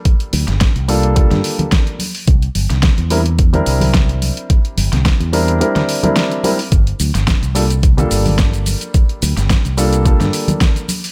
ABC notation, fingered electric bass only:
X:1
M:4/4
L:1/16
Q:"Swing 16ths" 1/4=108
K:Gdor
V:1 name="Fingered electric bass" clef=bass
z2 D,, G,,, z C,,3 z G,, z6 | C,, z G,,, C,, z E,,4 z C,,4 z2 | z2 G,,, C,, z E,,3 z8 | G,,, z D,, G,,, z C,,4 z G,,,4 z2 |
z2 D,, G,,, z C,,3 z G,, z6 |]